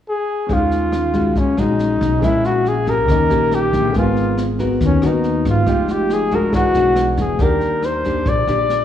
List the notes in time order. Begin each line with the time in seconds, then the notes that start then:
0.09 G#4
0.47 D#2 D#3 G#3 C#4 F4, kick, snare
0.51 F4 G#4 F5
0.71 snare
0.93 cross-stick, snare
1.14 G#3 C#4 F#4, kick, snare
1.36 A#1 A#2 C#4, kick, snare
1.57 A#1 G#3 C#4 D#4 F#4, cross-stick, snare
1.79 snare
2.01 B1, kick, snare
2.19 A#1 A#2 G#3 C#4 E4 G#4 A#4, kick, cross-stick, snare
2.23 C#4 E4 E5
2.44 F#4, snare
2.66 G#4, snare
2.86 A#3 C#4 G4 A#4, kick, snare
3.05 D#2 D#3 C#4 G4, kick, cross-stick, snare
3.09 A#4 D#5
3.29 A#1 A#3 C#4 G4, snare
3.51 G4, cross-stick, snare
3.73 A#1, kick, snare
3.91 G#1 G#3 B3 G#4 A#4, kick, snare
3.96 F4 A#4 G#5
4.16 snare
4.38 cross-stick, snare
4.59 B3 F#4 A#4, kick, snare
4.81 D#2 D#3, kick, snare
4.86 C#4
5.02 D#2 B3 F#4 A#4, cross-stick, snare
5.07 D#4
5.24 snare
5.45 G#1, kick, snare
5.49 F4
5.64 F1 F3 G#3 D#4 F4, kick, cross-stick, snare
5.68 G4 D#5 G5
5.88 G4, snare
6.10 G#4, snare
6.31 G#3 D4 F#4 A#4, kick, snare
6.50 E1 E4 G#4 D5, kick, cross-stick, snare
6.54 E3 F#4 F#5
6.74 B1 G#3 D4 F#4, snare
6.96 cross-stick, snare
7.17 E1 G#4, kick, snare
7.39 D#2 D#3 A#3 D4 G4 A#4 D5 G5, kick, snare
7.61 snare
7.82 C5, cross-stick, snare
8.04 A#3 D4 G4, kick, snare
8.26 A#1 A#2 D5, kick, snare
8.47 A#1 A#3 D4 G4, cross-stick, snare
8.69 snare